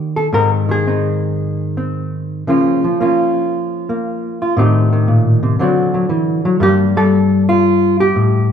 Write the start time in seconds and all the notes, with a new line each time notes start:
Already playing: D#3 A#3 D4 G4
0.16 A4
0.33 G#2 D#3 C4 D#4 A#4
0.69 D#3 G#4
0.87 C4 D#4
1.77 C4
2.47 C#3 F3 A#3 C#4 F4
2.84 F3
3.01 A#3 C#4 F4
3.89 A#3
4.42 F4
4.57 A2 D#3 C4 D#4 G4
4.93 D#3
5.08 A#2
5.43 C3
5.59 D3 F#3 C4 D4 F#4
5.94 F#3
6.09 E3
6.45 F#3
6.60 G2 G3 A#3 D4 G4
6.97 G3 A4
7.49 F4
8.00 G4
8.16 A2